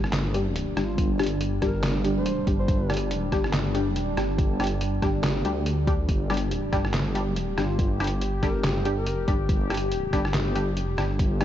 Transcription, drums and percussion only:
0.04 cross-stick medium
0.13 snare loud
0.13 clap loud
0.13 closed hi-hat medium
0.34 closed hi-hat medium
0.56 closed hi-hat medium
0.77 cross-stick medium
0.77 closed hi-hat medium
0.98 kick loud
0.98 closed hi-hat medium
1.19 cross-stick medium
1.19 closed hi-hat soft
1.23 closed hi-hat medium
1.26 closed hi-hat medium
1.41 closed hi-hat medium
1.62 kick medium
1.62 cross-stick medium
1.62 closed hi-hat medium
1.83 snare loud
1.83 clap medium
1.83 closed hi-hat medium
2.04 closed hi-hat medium
2.26 closed hi-hat medium
2.47 kick loud
2.47 closed hi-hat medium
2.68 kick loud
2.68 closed hi-hat medium
2.90 cross-stick medium
2.90 closed hi-hat soft
2.94 closed hi-hat medium
2.97 closed hi-hat medium
3.11 closed hi-hat medium
3.32 kick medium
3.32 cross-stick medium
3.32 closed hi-hat medium
3.44 cross-stick medium
3.53 snare loud
3.53 clap loud
3.53 closed hi-hat medium
3.75 closed hi-hat soft
3.96 closed hi-hat medium
4.17 cross-stick medium
4.17 closed hi-hat medium
4.38 kick loud
4.38 closed hi-hat medium
4.60 cross-stick medium
4.60 closed hi-hat soft
4.64 closed hi-hat medium
4.67 closed hi-hat medium
4.81 closed hi-hat medium
5.02 kick medium
5.02 cross-stick medium
5.02 closed hi-hat medium
5.24 snare loud
5.24 clap medium
5.24 closed hi-hat medium
5.45 closed hi-hat soft
5.66 closed hi-hat medium
5.87 kick loud
5.87 closed hi-hat medium
6.09 kick loud
6.09 closed hi-hat medium
6.30 cross-stick medium
6.30 closed hi-hat soft
6.34 closed hi-hat medium
6.37 closed hi-hat medium
6.51 closed hi-hat medium
6.73 kick medium
6.73 cross-stick medium
6.73 closed hi-hat medium
6.85 cross-stick medium
6.94 snare loud
6.94 clap medium
6.94 closed hi-hat medium
7.15 closed hi-hat soft
7.36 closed hi-hat medium
7.58 cross-stick medium
7.58 closed hi-hat soft
7.79 kick loud
7.79 closed hi-hat medium
8.00 cross-stick medium
8.00 closed hi-hat medium
8.04 closed hi-hat medium
8.07 closed hi-hat medium
8.21 closed hi-hat medium
8.43 kick medium
8.43 cross-stick medium
8.43 closed hi-hat medium
8.64 snare loud
8.64 clap medium
8.64 closed hi-hat medium
8.85 closed hi-hat medium
9.07 closed hi-hat medium
9.28 kick loud
9.28 closed hi-hat medium
9.49 kick loud
9.49 closed hi-hat medium
9.70 cross-stick medium
9.70 closed hi-hat medium
9.74 closed hi-hat medium
9.77 closed hi-hat medium
9.92 closed hi-hat medium
10.13 kick medium
10.13 cross-stick medium
10.13 closed hi-hat medium
10.25 cross-stick medium
10.34 snare loud
10.34 clap medium
10.34 closed hi-hat medium
10.56 closed hi-hat medium
10.77 closed hi-hat medium
10.98 cross-stick medium
10.98 closed hi-hat medium
11.19 kick loud
11.19 closed hi-hat medium
11.41 cross-stick medium
11.41 closed hi-hat medium

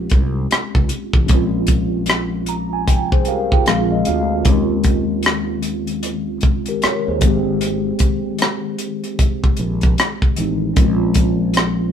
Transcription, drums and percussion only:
0.10 kick medium
0.10 closed hi-hat soft
0.51 cross-stick medium
0.51 closed hi-hat medium
0.75 kick medium
0.89 closed hi-hat medium
1.13 kick medium
1.28 kick medium
1.28 closed hi-hat medium
1.67 kick medium
1.67 closed hi-hat medium
2.06 cross-stick loud
2.06 closed hi-hat medium
2.46 closed hi-hat medium
2.88 kick medium
2.88 closed hi-hat medium
3.12 kick medium
3.25 closed hi-hat soft
3.52 kick medium
3.66 cross-stick medium
3.66 closed hi-hat medium
4.05 closed hi-hat medium
4.45 kick loud
4.45 closed hi-hat medium
4.84 kick medium
4.84 closed hi-hat medium
5.23 cross-stick loud
5.23 closed hi-hat medium
5.63 closed hi-hat medium
5.87 closed hi-hat soft
6.03 closed hi-hat medium
6.41 kick medium
6.41 closed hi-hat soft
6.66 closed hi-hat soft
6.82 cross-stick medium
6.82 closed hi-hat medium
7.21 kick medium
7.21 closed hi-hat medium
7.61 closed hi-hat medium
7.99 kick medium
7.99 closed hi-hat medium
8.39 cross-stick loud
8.39 closed hi-hat medium
8.78 closed hi-hat medium
9.04 closed hi-hat soft
9.19 kick medium
9.19 closed hi-hat medium
9.44 kick medium
9.57 closed hi-hat soft
9.81 kick medium
9.81 closed hi-hat soft
9.98 cross-stick loud
9.98 closed hi-hat medium
10.22 kick medium
10.36 closed hi-hat medium
10.76 kick medium
10.76 closed hi-hat medium
11.14 kick medium
11.14 closed hi-hat medium
11.54 cross-stick loud
11.54 closed hi-hat medium

